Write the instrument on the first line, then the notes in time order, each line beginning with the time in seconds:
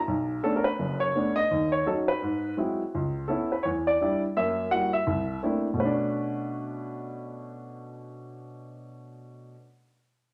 grand piano
0.08 B1
0.43 A3 B3 C#4 D4 A4
0.56 A#4
0.64 B4
0.79 F#1 F#2
1.00 C#5
1.15 A3 B3 C#4 D4
1.36 D#5
1.51 D#2
1.72 C#5
1.86 F#3 C#4 D#4 A4
2.08 B4
2.22 G#2
2.57 F#3 G#3 C4 E4
2.95 C#2
3.28 B3 C#4 E4 A4
3.52 B4
3.63 E2 C#5
3.87 D5
4.01 G3 D4 E4
4.37 F#2 A#3 E5
4.71 G3 A#3 E4 F#4 F#5
4.93 E5
5.07 C2
5.43 A3 A#3 C4 D4 E4
5.74 B2 A3
5.80 C#4 B4
5.85 D4